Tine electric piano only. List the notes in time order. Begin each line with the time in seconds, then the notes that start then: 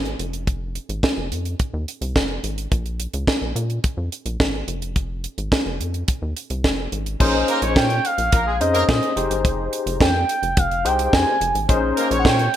7.20 C#4 D#4 G#4 C5
8.60 C#4 D#4 G#4 C5
9.16 D#4 G4 G#4 C5
10.84 D#4 G4 G#4 C5
11.69 C#4 D#4 G#4 C5